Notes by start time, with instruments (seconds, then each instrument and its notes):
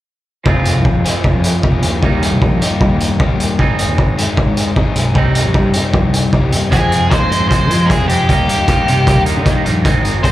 0.45 fingered electric bass F1, overdriven electric guitar F3 G#3 C4 F4 G#4, kick
0.65 closed hi-hat
0.75 fingered electric bass C2
0.85 fingered electric bass F1, kick
1.04 overdriven electric guitar F3 C4 F4 G#4, closed hi-hat
1.24 fingered electric bass F1, kick
1.35 fingered electric bass F2
1.44 closed hi-hat
1.62 fingered electric bass F1, overdriven electric guitar F3 C4 F4 G#4, kick
1.82 fingered electric bass D#2, closed hi-hat
2.02 fingered electric bass D#2, overdriven electric guitar D#3 G3 A#3 D#4 G4, kick
2.22 closed hi-hat
2.31 fingered electric bass C2
2.41 fingered electric bass A#1, kick
2.61 overdriven electric guitar D#3 G3 A#3 D#4 G4, closed hi-hat
2.81 fingered electric bass G2, kick
2.91 fingered electric bass D#2
3.00 closed hi-hat
3.19 fingered electric bass D#2, overdriven electric guitar D#3 G3 A#3 D#4 G4, kick
3.39 fingered electric bass D#2, closed hi-hat
3.59 fingered electric bass G#1, overdriven electric guitar G#2 D#3 G#3 C4 D#4 G#4, kick
3.79 closed hi-hat
3.88 fingered electric bass D#2
3.98 fingered electric bass G#1, kick
4.17 overdriven electric guitar G#2 D#3 G#3 C4 D#4 G#4, closed hi-hat
4.37 fingered electric bass G#1, kick
4.46 fingered electric bass G#2
4.57 closed hi-hat
4.76 fingered electric bass G#1, overdriven electric guitar G#2 D#3 G#3 C4 D#4 G#4, kick
4.96 fingered electric bass B1, closed hi-hat
5.15 fingered electric bass C2, overdriven electric guitar C3 G3 C4 D#4 G4, kick
5.35 closed hi-hat
5.45 fingered electric bass A#1
5.54 fingered electric bass G2, kick
5.73 overdriven electric guitar C3 G3 C4 D#4 G4, closed hi-hat
5.94 fingered electric bass F2, kick
6.03 fingered electric bass C2
6.14 closed hi-hat
6.33 fingered electric bass C2, overdriven electric guitar C3 G3 C4 D#4 G4, kick
6.52 fingered electric bass D#2, closed hi-hat
6.72 fingered electric bass F2, overdriven electric guitar F2 C3 F3 G#3 C4 G#4, lead electric guitar G#4, kick, closed hi-hat
6.81 fingered electric bass F2
6.92 overdriven electric guitar F3 G#3 C4 G#4, closed hi-hat
7.10 fingered electric bass D#2, overdriven electric guitar C3 F3 G#3 C4 G#4, lead electric guitar C5, kick, closed hi-hat
7.29 overdriven electric guitar F2 C3 F3 G#3 C4, closed hi-hat
7.40 fingered electric bass G#2
7.49 overdriven electric guitar C3 F3 G#3 C4, lead electric guitar C5, kick, closed hi-hat
7.70 overdriven electric guitar F2 C3 F3 G#3 C4 G#4, fingered electric bass F3, closed hi-hat
7.87 overdriven electric guitar F2 C3 F3 G#3, lead electric guitar G#4, kick, closed hi-hat
7.91 overdriven electric guitar C4 G#4
8.00 fingered electric bass F2
8.08 overdriven electric guitar F3 G#3 C4 G#4, lead electric guitar G4, closed hi-hat
8.28 fingered electric bass D#2, overdriven electric guitar D#3 G3 A#3 D#4 G4, kick, closed hi-hat
8.47 overdriven electric guitar G3 A#3 D#4 G4, closed hi-hat
8.58 fingered electric bass D#2
8.67 overdriven electric guitar D#3 G3 A#3 D#4 G4, kick, closed hi-hat
8.87 fingered electric bass C3, overdriven electric guitar D#3 G3 A#3 D#4, closed hi-hat
9.06 overdriven electric guitar D#3 G3 A#3 D#4, kick, closed hi-hat
9.17 fingered electric bass D#2
9.26 overdriven electric guitar D#3 G3 A#3 D#4 G4, closed hi-hat
9.37 fingered electric bass D#3
9.44 overdriven electric guitar D#3 G3 A#3 D#4 G4, kick, closed hi-hat
9.64 fingered electric bass A#1, overdriven electric guitar G3 A#3 D#4 G4, closed hi-hat
9.84 fingered electric bass G#1, overdriven electric guitar G#2 D#3 G#3 C4 D#4 G#4, kick, closed hi-hat
9.96 fingered electric bass G#1
10.04 overdriven electric guitar G#3 C4 D#4 G#4, closed hi-hat
10.22 fingered electric bass F1, overdriven electric guitar D#3 G#3 C4 D#4 G#4, lead electric guitar C5, kick, closed hi-hat